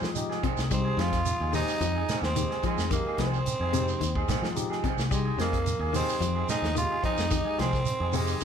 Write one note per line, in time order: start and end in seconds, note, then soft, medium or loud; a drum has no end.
0.00 0.10 D#3 medium
0.00 0.46 F3 medium
0.00 0.12 G#3 medium
0.00 snare medium
0.00 shekere soft
0.15 0.36 G#3 medium
0.15 0.36 D#4 medium
0.15 0.37 G4 medium
0.15 closed hi-hat medium
0.15 shekere medium
0.30 0.43 D#4 soft
0.30 0.43 G#4 medium
0.30 snare soft
0.43 0.66 C3 medium
0.43 0.60 C4 medium
0.43 0.60 D#4 medium
0.43 0.61 G#4 medium
0.43 kick medium
0.43 closed hi-hat soft
0.43 shekere soft
0.57 0.90 C2 medium
0.57 snare medium
0.57 shekere medium
0.70 0.93 G3 loud
0.70 1.00 G#3 medium
0.70 1.02 C4 medium
0.70 1.01 D#4 medium
0.70 1.02 G4 medium
0.70 kick medium
0.70 closed hi-hat medium
0.70 shekere medium
0.85 0.98 D#4 soft
0.85 0.98 G#4 soft
0.97 1.31 F2 loud
0.97 1.21 F3 medium
0.97 1.15 C4 soft
0.97 1.15 D#4 medium
0.97 1.54 F4 loud
0.97 1.16 G#4 medium
0.97 snare medium
0.97 closed hi-hat medium
0.97 shekere soft
1.13 kick medium
1.13 snare soft
1.13 closed hi-hat medium
1.13 shekere soft
1.26 closed hi-hat medium
1.26 shekere medium
1.40 1.62 D#2 medium
1.40 1.53 D#4 soft
1.40 1.53 G#4 medium
1.52 1.75 D#3 medium
1.52 1.83 G#3 medium
1.52 1.70 C4 medium
1.52 1.83 D#4 medium
1.52 1.71 D#4 medium
1.52 2.19 D#4 loud
1.52 1.84 G4 medium
1.52 1.71 G#4 medium
1.52 open hi-hat medium
1.52 shekere medium
1.68 shekere medium
1.80 2.03 F2 loud
1.80 2.03 F3 medium
1.80 closed hi-hat medium
1.80 shekere medium
1.96 2.08 D#4 soft
1.96 2.09 G#4 medium
2.09 2.26 C4 medium
2.09 2.26 D#4 medium
2.09 2.26 G#4 medium
2.09 snare medium
2.09 closed hi-hat soft
2.09 shekere medium
2.22 2.44 D#2 medium
2.22 2.62 C4 medium
2.22 snare medium
2.22 shekere soft
2.36 2.58 D#3 medium
2.36 2.56 G#3 medium
2.36 2.57 D#4 medium
2.36 2.57 G4 medium
2.36 closed hi-hat medium
2.36 shekere medium
2.51 2.64 D#4 soft
2.51 2.64 G#4 medium
2.51 snare soft
2.63 2.86 F3 medium
2.63 2.90 G#3 medium
2.63 2.81 C4 medium
2.63 2.81 D#4 medium
2.63 2.82 G#4 medium
2.63 muted fingered electric bass stroke soft
2.63 kick medium
2.63 closed hi-hat soft
2.63 shekere soft
2.78 3.00 F2 medium
2.78 snare medium
2.78 shekere medium
2.91 3.13 D#3 medium
2.91 3.21 G#3 medium
2.91 3.17 A#3 medium
2.91 3.22 D#4 medium
2.91 3.22 G4 medium
2.91 kick medium
2.91 closed hi-hat medium
2.91 shekere medium
3.06 3.18 D#4 soft
3.06 3.18 G#4 soft
3.06 muted fingered electric bass stroke soft
3.18 3.40 C2 medium
3.18 3.41 F3 medium
3.18 3.35 C4 medium
3.18 4.80 C4 medium
3.18 3.36 D#4 medium
3.18 3.36 G#4 medium
3.18 snare medium
3.18 closed hi-hat soft
3.18 shekere soft
3.33 shekere soft
3.46 closed hi-hat medium
3.46 shekere medium
3.60 3.93 F2 medium
3.60 3.73 D#4 soft
3.60 3.74 G#4 medium
3.72 3.95 C3 medium
3.72 4.03 G#3 medium
3.72 3.91 C4 medium
3.72 4.04 D#4 medium
3.72 3.91 D#4 medium
3.72 4.04 G4 medium
3.72 muted clean electric guitar stroke medium
3.72 closed hi-hat medium
3.72 shekere medium
3.88 shekere medium
4.00 4.23 D#2 medium
4.00 4.23 D#3 medium
4.00 closed hi-hat medium
4.00 shekere medium
4.15 4.28 D#4 soft
4.15 4.28 G#4 medium
4.15 kick medium
4.28 4.51 D#3 medium
4.28 4.45 C4 medium
4.28 4.46 D#4 medium
4.28 4.46 G#4 medium
4.28 kick medium
4.28 snare medium
4.28 closed hi-hat soft
4.28 shekere medium
4.42 4.86 F3 medium
4.42 snare medium
4.42 shekere soft
4.55 4.76 G#3 medium
4.55 4.76 D#4 medium
4.55 4.77 G4 medium
4.55 closed hi-hat medium
4.55 shekere medium
4.70 4.83 D#4 soft
4.70 4.83 G#4 medium
4.70 snare soft
4.84 5.06 C3 medium
4.84 5.00 C4 medium
4.84 5.01 D#4 medium
4.84 5.01 G#4 medium
4.84 kick medium
4.84 closed hi-hat soft
4.84 shekere soft
4.97 5.30 C2 medium
4.97 snare medium
4.97 shekere medium
5.10 5.33 G3 medium
5.10 5.41 G#3 medium
5.10 5.38 G#3 medium
5.10 5.41 D#4 medium
5.10 5.42 G4 medium
5.10 kick medium
5.10 closed hi-hat medium
5.10 shekere medium
5.25 5.38 G#4 soft
5.38 5.71 F2 medium
5.38 5.61 F3 medium
5.38 5.91 A#3 medium
5.38 5.55 C4 medium
5.38 5.56 D#4 medium
5.38 5.56 G#4 medium
5.38 snare medium
5.38 closed hi-hat medium
5.38 shekere soft
5.53 kick medium
5.53 closed hi-hat medium
5.53 shekere soft
5.66 closed hi-hat medium
5.66 shekere medium
5.79 6.02 D#2 medium
5.79 5.93 D#4 soft
5.79 5.94 G#4 medium
5.92 6.15 D#3 medium
5.92 6.23 G#3 medium
5.92 6.11 C4 medium
5.92 6.46 C4 loud
5.92 6.23 D#4 medium
5.92 6.11 D#4 medium
5.92 6.24 G4 medium
5.92 6.11 G#4 medium
5.92 open hi-hat medium
5.92 shekere medium
6.09 shekere medium
6.20 6.43 F2 loud
6.20 6.43 F3 medium
6.20 closed hi-hat medium
6.20 shekere medium
6.35 6.48 D#4 soft
6.35 6.49 G#4 soft
6.49 6.66 C4 medium
6.49 6.66 D#4 medium
6.49 6.75 D#4 loud
6.49 6.66 G#4 medium
6.49 snare medium
6.49 closed hi-hat soft
6.49 shekere medium
6.62 6.84 D#2 medium
6.62 snare medium
6.62 shekere soft
6.74 6.98 D#3 medium
6.74 6.95 G#3 medium
6.74 6.96 D#4 medium
6.74 7.02 F4 loud
6.74 6.97 G4 medium
6.74 closed hi-hat medium
6.74 shekere medium
6.91 7.03 D#4 soft
6.91 7.04 G#4 soft
7.03 7.25 F3 medium
7.03 7.21 C4 medium
7.03 7.21 D#4 medium
7.03 7.61 D#4 loud
7.03 7.21 G#4 medium
7.03 muted fingered electric bass stroke soft
7.03 kick medium
7.03 closed hi-hat soft
7.03 shekere soft
7.17 7.40 F2 medium
7.17 snare medium
7.17 shekere medium
7.30 7.53 D#3 medium
7.30 7.61 G#3 medium
7.30 7.61 D#4 medium
7.30 7.62 G4 medium
7.30 kick medium
7.30 closed hi-hat medium
7.30 shekere medium
7.45 7.58 D#4 soft
7.45 7.58 G#4 soft
7.45 muted fingered electric bass stroke soft
7.58 7.81 C2 medium
7.58 7.81 F3 medium
7.58 7.75 C4 medium
7.58 8.17 C4 loud
7.58 7.76 D#4 medium
7.58 7.76 G#4 medium
7.58 snare medium
7.58 closed hi-hat soft
7.58 shekere soft
7.72 kick medium
7.72 snare soft
7.72 shekere soft
7.85 closed hi-hat medium
7.85 shekere medium
8.00 8.33 F2 medium
8.00 8.13 D#4 soft
8.00 8.13 G#4 medium
8.12 8.36 C3 medium
8.12 8.43 G#3 medium
8.12 8.44 G#3 medium
8.12 8.30 C4 medium
8.12 8.43 D#4 medium
8.12 8.31 D#4 medium
8.12 8.44 G4 medium
8.12 8.31 G#4 medium
8.12 open hi-hat medium
8.12 shekere medium
8.27 shekere medium
8.40 shekere medium